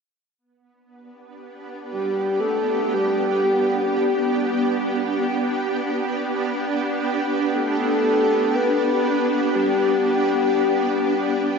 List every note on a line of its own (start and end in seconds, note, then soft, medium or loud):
0.38 11.59 B3 medium
0.71 11.59 D4 medium
0.90 11.59 G4 medium
1.92 2.42 G4 medium
2.40 2.95 A4 loud
2.94 4.97 G4 medium
7.53 8.57 A4 loud
8.55 9.57 B4 loud
9.55 11.59 G4 loud